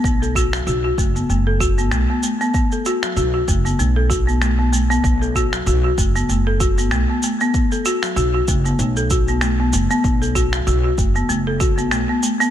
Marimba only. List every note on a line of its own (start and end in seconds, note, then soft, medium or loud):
0.05 0.21 B3 medium
0.22 0.35 A4 medium
0.36 0.46 F#4 medium
0.54 0.61 F#3 medium
0.67 0.77 F#4 medium
0.85 0.92 F#4 medium
0.98 1.08 A3 medium
1.16 1.28 B3 medium
1.30 1.45 A3 medium
1.47 1.60 A4 medium
1.60 1.71 F#4 medium
1.78 1.86 B3 medium
1.92 2.09 A3 medium
2.10 2.23 B3 medium
2.23 2.33 A3 medium
2.41 2.53 B3 medium
2.54 2.71 B3 medium
2.72 2.85 A4 medium
2.86 2.96 F#4 medium
3.04 3.11 F#3 medium
3.17 3.27 F#4 medium
3.34 3.42 F#4 medium
3.48 3.58 A3 medium
3.65 3.78 B3 medium
3.79 3.95 A3 medium
3.96 4.10 A4 medium
4.10 4.20 F#4 medium
4.27 4.36 B3 medium
4.41 4.58 A3 medium
4.59 4.72 B3 medium
4.73 4.83 A3 medium
4.90 5.03 B3 medium
5.04 5.21 B3 medium
5.22 5.35 A4 medium
5.36 5.46 F#4 medium
5.53 5.61 F#3 medium
5.67 5.77 F#4 medium
5.84 5.92 F#4 medium
5.98 6.08 A3 medium
6.16 6.28 B3 medium
6.30 6.45 A3 medium
6.47 6.60 A4 medium
6.60 6.70 F#4 medium
6.78 6.86 B3 medium
6.92 7.09 A3 medium
7.10 7.23 B3 medium
7.24 7.33 A3 medium
7.41 7.53 B3 medium
7.55 7.71 B3 medium
7.72 7.85 A4 medium
7.86 7.96 F#4 loud
8.03 8.11 F#3 medium
8.17 8.27 F#4 medium
8.34 8.42 F#4 medium
8.48 8.58 A3 medium
8.65 8.78 B3 medium
8.79 8.95 A3 medium
8.97 9.10 A4 medium
9.11 9.21 F#4 medium
9.28 9.36 B3 medium
9.42 9.58 A3 medium
9.60 9.73 B3 medium
9.74 9.83 A3 medium
9.90 10.03 B3 medium
10.04 10.21 B3 medium
10.22 10.35 A4 medium
10.35 10.45 F#4 loud
10.53 10.61 F#3 medium
10.67 10.77 F#4 medium
10.84 10.92 F#4 medium
10.98 11.08 A3 medium
11.16 11.28 B3 medium
11.29 11.45 A3 medium
11.47 11.60 A4 medium
11.60 11.70 F#4 medium
11.78 11.86 B3 medium
11.92 12.08 A3 medium
12.09 12.22 B3 medium
12.23 12.33 A3 medium
12.40 12.50 B3 medium